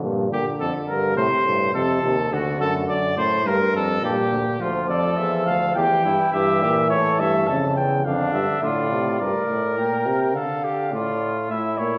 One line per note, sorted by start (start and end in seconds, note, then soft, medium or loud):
0.03 0.31 G2 medium
0.03 0.30 A#2 medium
0.30 0.44 A#2 medium
0.30 1.15 D3 medium
0.30 0.45 G4 medium
0.60 0.73 F2 medium
0.60 0.73 A4 medium
0.88 1.16 G2 medium
0.88 1.17 A#4 medium
1.16 1.29 A2 medium
1.16 1.45 C3 medium
1.16 1.73 C5 medium
1.45 1.73 G2 medium
1.45 1.74 A2 medium
1.74 2.02 F2 medium
1.74 2.02 C3 medium
1.74 2.35 A4 medium
2.03 2.31 D#2 medium
2.03 2.16 C3 medium
2.31 2.59 D2 medium
2.31 3.16 D3 medium
2.31 2.60 F#4 medium
2.60 2.88 F#2 medium
2.60 2.73 A4 medium
2.88 3.16 F#2 medium
2.88 3.17 D5 medium
3.17 3.45 A2 medium
3.17 3.48 C5 medium
3.44 3.98 G2 medium
3.44 3.58 G2 medium
3.44 3.75 A#4 medium
3.74 4.02 F2 medium
3.74 4.03 A4 loud
4.01 4.16 G2 medium
4.01 4.58 A#2 medium
4.01 4.62 G4 medium
4.31 4.44 D2 medium
4.60 4.90 D2 medium
4.60 5.77 F3 medium
4.60 4.89 F4 medium
4.88 5.18 F2 medium
4.88 5.74 A4 medium
4.88 5.19 D5 medium
5.18 5.46 E2 medium
5.18 5.46 E5 medium
5.46 5.75 D2 medium
5.46 5.74 F5 medium
5.75 5.88 E2 medium
5.75 6.32 E3 medium
5.75 6.04 G4 medium
5.75 6.31 G5 medium
6.04 6.17 G2 medium
6.04 6.33 E4 medium
6.32 6.64 G2 medium
6.32 7.45 E3 medium
6.32 6.61 G4 medium
6.32 6.89 E5 medium
6.62 6.92 A#2 medium
6.62 6.75 G4 medium
6.90 7.21 A2 medium
6.90 7.75 A4 medium
6.90 7.22 C#5 loud
7.19 7.50 G2 medium
7.19 7.49 E5 medium
7.48 7.79 F2 medium
7.48 8.04 C#3 medium
7.48 7.76 A5 medium
7.76 8.04 E2 medium
7.76 8.06 G5 medium
8.05 8.33 F2 medium
8.05 8.62 D3 medium
8.05 8.64 D4 medium
8.05 8.32 F5 medium
8.33 8.47 G2 medium
8.33 8.62 E5 medium
8.62 9.19 A2 medium
8.62 8.90 D3 medium
8.62 9.20 F4 medium
8.62 9.18 D5 medium
8.91 9.20 C3 medium
9.19 9.33 G2 medium
9.19 10.32 A#4 medium
9.19 9.73 D5 medium
9.49 9.79 A2 medium
9.78 10.07 A#2 medium
9.78 10.34 G5 medium
10.06 10.36 C3 medium
10.34 10.94 D3 medium
10.34 10.65 A4 medium
10.34 10.92 F5 medium
10.64 10.93 G4 medium
10.92 11.50 A2 medium
10.92 11.50 F4 medium
10.92 11.33 D5 medium
11.50 11.79 A2 medium
11.50 11.98 E4 medium
11.50 11.80 E5 medium
11.78 11.92 A#2 medium
11.78 11.98 C#5 medium